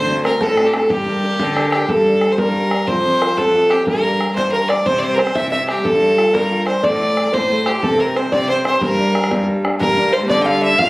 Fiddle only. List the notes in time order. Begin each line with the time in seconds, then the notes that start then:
Already playing: C5
0.25 A#4
0.43 A4
0.67 G4
0.74 A4
0.90 G4
1.72 G4
1.89 A4
2.32 C5
2.38 A#4
2.87 C5
3.37 A4
3.71 G4
3.87 A#4
4.36 C5
4.52 A#4
4.68 D5
4.86 C5
4.99 C5 D5
5.14 A#4
5.19 C5
5.35 E5
5.52 E5
5.69 G4
5.85 A4
6.34 A#4
6.67 C5
6.84 D5
7.34 C5
7.66 G4
7.82 A4
8.00 A#4
8.16 C5
8.33 D5
8.49 C5
8.66 C5
8.83 A#4
9.80 A#4
10.13 C5
10.29 D5
10.43 F5 G5
10.63 E5
10.79 F5